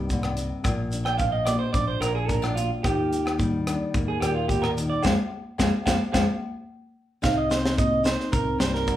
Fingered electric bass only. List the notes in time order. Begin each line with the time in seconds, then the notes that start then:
Already playing: C2
0.65 A#1
1.74 A#1
2.01 A#1
2.84 D#2
3.94 D#2
4.21 D#2
5.05 F2
5.60 F2
5.87 F2
6.15 F2
7.24 C2
8.33 C2
8.60 C2